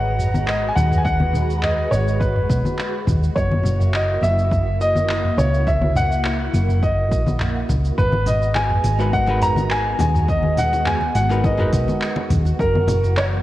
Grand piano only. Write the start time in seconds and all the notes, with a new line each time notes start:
Already playing: F#5
0.46 D#5
0.69 G#5
0.76 F#5
0.98 G#5
1.05 F#5
1.62 D#5
1.91 C#5
2.20 B4
3.36 C#5
3.94 D#5
4.23 E5
4.81 D#5
5.38 C#5
5.68 E5
5.97 F#5
6.83 D#5
7.98 B4
8.27 D#5
8.55 G#5
9.13 F#5
9.42 A#5
9.71 G#5
10.01 G#5
10.29 D#5
10.58 F#5
10.87 G#5
11.15 F#5
11.44 D#5
12.60 A#4
13.18 C#5